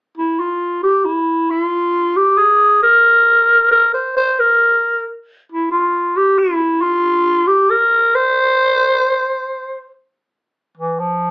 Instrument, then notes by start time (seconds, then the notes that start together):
clarinet
0.18 E4
0.40 F4
0.83 G4
1.05 E4
1.51 E4
1.62 F4
2.16 G4
2.38 G#4
2.83 A#4
3.72 A#4
3.94 C5
4.17 C5
4.40 A#4
5.52 E4
5.71 F4
6.17 G4
6.38 E4
6.82 F4
7.47 G4
7.70 A#4
8.15 C5
10.77 E3
10.99 F3